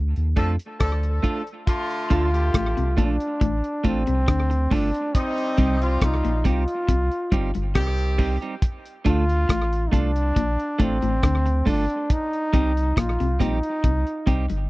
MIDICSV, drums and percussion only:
0, 0, Header, 1, 2, 480
1, 0, Start_track
1, 0, Tempo, 868307
1, 925, Time_signature, 4, 2, 24, 8
1, 8125, End_track
2, 0, Start_track
2, 0, Title_t, "Drums"
2, 89, Note_on_c, 9, 42, 42
2, 145, Note_off_c, 9, 42, 0
2, 202, Note_on_c, 9, 42, 75
2, 203, Note_on_c, 9, 36, 88
2, 258, Note_off_c, 9, 36, 0
2, 258, Note_off_c, 9, 42, 0
2, 328, Note_on_c, 9, 42, 56
2, 383, Note_off_c, 9, 42, 0
2, 443, Note_on_c, 9, 42, 80
2, 445, Note_on_c, 9, 36, 118
2, 446, Note_on_c, 9, 37, 114
2, 498, Note_off_c, 9, 42, 0
2, 500, Note_off_c, 9, 36, 0
2, 501, Note_off_c, 9, 37, 0
2, 571, Note_on_c, 9, 42, 50
2, 626, Note_off_c, 9, 42, 0
2, 684, Note_on_c, 9, 36, 84
2, 686, Note_on_c, 9, 42, 70
2, 739, Note_off_c, 9, 36, 0
2, 741, Note_off_c, 9, 42, 0
2, 812, Note_on_c, 9, 42, 45
2, 868, Note_off_c, 9, 42, 0
2, 925, Note_on_c, 9, 36, 112
2, 926, Note_on_c, 9, 42, 94
2, 980, Note_off_c, 9, 36, 0
2, 981, Note_off_c, 9, 42, 0
2, 1052, Note_on_c, 9, 42, 50
2, 1107, Note_off_c, 9, 42, 0
2, 1163, Note_on_c, 9, 42, 81
2, 1166, Note_on_c, 9, 36, 97
2, 1218, Note_off_c, 9, 42, 0
2, 1221, Note_off_c, 9, 36, 0
2, 1295, Note_on_c, 9, 42, 55
2, 1350, Note_off_c, 9, 42, 0
2, 1405, Note_on_c, 9, 42, 98
2, 1406, Note_on_c, 9, 36, 124
2, 1410, Note_on_c, 9, 37, 127
2, 1461, Note_off_c, 9, 36, 0
2, 1461, Note_off_c, 9, 42, 0
2, 1465, Note_off_c, 9, 37, 0
2, 1534, Note_on_c, 9, 42, 55
2, 1589, Note_off_c, 9, 42, 0
2, 1645, Note_on_c, 9, 36, 91
2, 1648, Note_on_c, 9, 42, 73
2, 1701, Note_off_c, 9, 36, 0
2, 1703, Note_off_c, 9, 42, 0
2, 1770, Note_on_c, 9, 42, 57
2, 1826, Note_off_c, 9, 42, 0
2, 1886, Note_on_c, 9, 36, 107
2, 1886, Note_on_c, 9, 42, 76
2, 1942, Note_off_c, 9, 36, 0
2, 1942, Note_off_c, 9, 42, 0
2, 2012, Note_on_c, 9, 42, 44
2, 2068, Note_off_c, 9, 42, 0
2, 2125, Note_on_c, 9, 42, 79
2, 2126, Note_on_c, 9, 36, 94
2, 2180, Note_off_c, 9, 42, 0
2, 2181, Note_off_c, 9, 36, 0
2, 2249, Note_on_c, 9, 42, 58
2, 2304, Note_off_c, 9, 42, 0
2, 2364, Note_on_c, 9, 42, 85
2, 2366, Note_on_c, 9, 36, 121
2, 2367, Note_on_c, 9, 37, 121
2, 2420, Note_off_c, 9, 42, 0
2, 2422, Note_off_c, 9, 36, 0
2, 2422, Note_off_c, 9, 37, 0
2, 2493, Note_on_c, 9, 42, 58
2, 2548, Note_off_c, 9, 42, 0
2, 2606, Note_on_c, 9, 36, 95
2, 2607, Note_on_c, 9, 46, 78
2, 2661, Note_off_c, 9, 36, 0
2, 2662, Note_off_c, 9, 46, 0
2, 2733, Note_on_c, 9, 42, 53
2, 2788, Note_off_c, 9, 42, 0
2, 2845, Note_on_c, 9, 36, 121
2, 2846, Note_on_c, 9, 42, 97
2, 2901, Note_off_c, 9, 36, 0
2, 2901, Note_off_c, 9, 42, 0
2, 2973, Note_on_c, 9, 42, 49
2, 3028, Note_off_c, 9, 42, 0
2, 3082, Note_on_c, 9, 42, 84
2, 3086, Note_on_c, 9, 36, 101
2, 3137, Note_off_c, 9, 42, 0
2, 3141, Note_off_c, 9, 36, 0
2, 3216, Note_on_c, 9, 42, 55
2, 3271, Note_off_c, 9, 42, 0
2, 3324, Note_on_c, 9, 42, 87
2, 3326, Note_on_c, 9, 36, 120
2, 3329, Note_on_c, 9, 37, 127
2, 3380, Note_off_c, 9, 42, 0
2, 3381, Note_off_c, 9, 36, 0
2, 3384, Note_off_c, 9, 37, 0
2, 3453, Note_on_c, 9, 42, 55
2, 3508, Note_off_c, 9, 42, 0
2, 3565, Note_on_c, 9, 36, 95
2, 3568, Note_on_c, 9, 42, 73
2, 3621, Note_off_c, 9, 36, 0
2, 3623, Note_off_c, 9, 42, 0
2, 3692, Note_on_c, 9, 42, 57
2, 3747, Note_off_c, 9, 42, 0
2, 3806, Note_on_c, 9, 36, 105
2, 3807, Note_on_c, 9, 42, 85
2, 3861, Note_off_c, 9, 36, 0
2, 3862, Note_off_c, 9, 42, 0
2, 3933, Note_on_c, 9, 42, 46
2, 3988, Note_off_c, 9, 42, 0
2, 4046, Note_on_c, 9, 36, 90
2, 4046, Note_on_c, 9, 42, 78
2, 4101, Note_off_c, 9, 36, 0
2, 4101, Note_off_c, 9, 42, 0
2, 4171, Note_on_c, 9, 42, 55
2, 4227, Note_off_c, 9, 42, 0
2, 4284, Note_on_c, 9, 42, 83
2, 4287, Note_on_c, 9, 36, 119
2, 4287, Note_on_c, 9, 37, 127
2, 4339, Note_off_c, 9, 42, 0
2, 4342, Note_off_c, 9, 36, 0
2, 4342, Note_off_c, 9, 37, 0
2, 4414, Note_on_c, 9, 42, 53
2, 4469, Note_off_c, 9, 42, 0
2, 4527, Note_on_c, 9, 36, 95
2, 4529, Note_on_c, 9, 46, 77
2, 4582, Note_off_c, 9, 36, 0
2, 4585, Note_off_c, 9, 46, 0
2, 4656, Note_on_c, 9, 42, 49
2, 4711, Note_off_c, 9, 42, 0
2, 4766, Note_on_c, 9, 36, 127
2, 4767, Note_on_c, 9, 42, 91
2, 4822, Note_off_c, 9, 36, 0
2, 4822, Note_off_c, 9, 42, 0
2, 4895, Note_on_c, 9, 42, 50
2, 4951, Note_off_c, 9, 42, 0
2, 5004, Note_on_c, 9, 42, 86
2, 5007, Note_on_c, 9, 36, 106
2, 5059, Note_off_c, 9, 42, 0
2, 5063, Note_off_c, 9, 36, 0
2, 5138, Note_on_c, 9, 42, 57
2, 5193, Note_off_c, 9, 42, 0
2, 5248, Note_on_c, 9, 36, 120
2, 5248, Note_on_c, 9, 42, 90
2, 5253, Note_on_c, 9, 37, 127
2, 5303, Note_off_c, 9, 36, 0
2, 5303, Note_off_c, 9, 42, 0
2, 5308, Note_off_c, 9, 37, 0
2, 5377, Note_on_c, 9, 42, 50
2, 5433, Note_off_c, 9, 42, 0
2, 5488, Note_on_c, 9, 36, 98
2, 5493, Note_on_c, 9, 42, 81
2, 5544, Note_off_c, 9, 36, 0
2, 5548, Note_off_c, 9, 42, 0
2, 5616, Note_on_c, 9, 42, 59
2, 5671, Note_off_c, 9, 42, 0
2, 5729, Note_on_c, 9, 36, 104
2, 5730, Note_on_c, 9, 42, 73
2, 5784, Note_off_c, 9, 36, 0
2, 5785, Note_off_c, 9, 42, 0
2, 5857, Note_on_c, 9, 42, 44
2, 5912, Note_off_c, 9, 42, 0
2, 5968, Note_on_c, 9, 36, 102
2, 5968, Note_on_c, 9, 42, 78
2, 6024, Note_off_c, 9, 36, 0
2, 6024, Note_off_c, 9, 42, 0
2, 6093, Note_on_c, 9, 42, 58
2, 6148, Note_off_c, 9, 42, 0
2, 6208, Note_on_c, 9, 42, 91
2, 6209, Note_on_c, 9, 36, 117
2, 6211, Note_on_c, 9, 37, 117
2, 6263, Note_off_c, 9, 42, 0
2, 6265, Note_off_c, 9, 36, 0
2, 6266, Note_off_c, 9, 37, 0
2, 6337, Note_on_c, 9, 42, 56
2, 6392, Note_off_c, 9, 42, 0
2, 6449, Note_on_c, 9, 36, 93
2, 6453, Note_on_c, 9, 46, 80
2, 6505, Note_off_c, 9, 36, 0
2, 6508, Note_off_c, 9, 46, 0
2, 6577, Note_on_c, 9, 42, 49
2, 6633, Note_off_c, 9, 42, 0
2, 6689, Note_on_c, 9, 36, 114
2, 6689, Note_on_c, 9, 42, 93
2, 6744, Note_off_c, 9, 36, 0
2, 6744, Note_off_c, 9, 42, 0
2, 6818, Note_on_c, 9, 42, 48
2, 6873, Note_off_c, 9, 42, 0
2, 6927, Note_on_c, 9, 42, 85
2, 6930, Note_on_c, 9, 36, 103
2, 6983, Note_off_c, 9, 42, 0
2, 6985, Note_off_c, 9, 36, 0
2, 7060, Note_on_c, 9, 42, 55
2, 7115, Note_off_c, 9, 42, 0
2, 7169, Note_on_c, 9, 36, 114
2, 7170, Note_on_c, 9, 42, 95
2, 7174, Note_on_c, 9, 37, 123
2, 7225, Note_off_c, 9, 36, 0
2, 7225, Note_off_c, 9, 42, 0
2, 7229, Note_off_c, 9, 37, 0
2, 7298, Note_on_c, 9, 42, 53
2, 7353, Note_off_c, 9, 42, 0
2, 7409, Note_on_c, 9, 36, 95
2, 7413, Note_on_c, 9, 42, 77
2, 7465, Note_off_c, 9, 36, 0
2, 7468, Note_off_c, 9, 42, 0
2, 7536, Note_on_c, 9, 42, 59
2, 7591, Note_off_c, 9, 42, 0
2, 7650, Note_on_c, 9, 36, 110
2, 7650, Note_on_c, 9, 42, 80
2, 7705, Note_off_c, 9, 36, 0
2, 7705, Note_off_c, 9, 42, 0
2, 7776, Note_on_c, 9, 42, 47
2, 7832, Note_off_c, 9, 42, 0
2, 7889, Note_on_c, 9, 36, 98
2, 7889, Note_on_c, 9, 42, 80
2, 7944, Note_off_c, 9, 36, 0
2, 7944, Note_off_c, 9, 42, 0
2, 8013, Note_on_c, 9, 42, 54
2, 8069, Note_off_c, 9, 42, 0
2, 8125, End_track
0, 0, End_of_file